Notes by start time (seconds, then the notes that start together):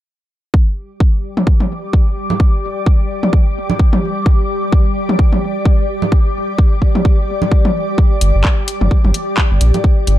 0.54 G3 G4, kick
0.66 D6
0.73 G4
0.92 D5
1.00 kick
1.37 high tom
1.47 kick
1.60 high tom
1.93 kick
2.30 low conga
2.40 kick
2.86 kick
3.23 high tom
3.33 kick
3.70 low conga
3.79 kick
3.93 high tom
4.26 kick
4.72 kick
5.09 high tom
5.19 kick
5.32 high tom
5.65 kick
6.02 low conga
6.12 kick
6.58 kick
6.82 kick
6.95 high tom
7.05 kick
7.42 low conga
7.52 kick
7.65 high tom
7.98 kick
8.21 G1, closed hi-hat
8.35 G1
8.45 kick, clap
8.68 closed hi-hat
8.81 G1, high tom
8.91 kick
9.04 G1, high tom
9.14 closed hi-hat
9.38 kick, clap
9.51 G1
9.61 A#1, closed hi-hat
9.74 closed hi-hat, low conga
9.84 kick
10.07 G1, closed hi-hat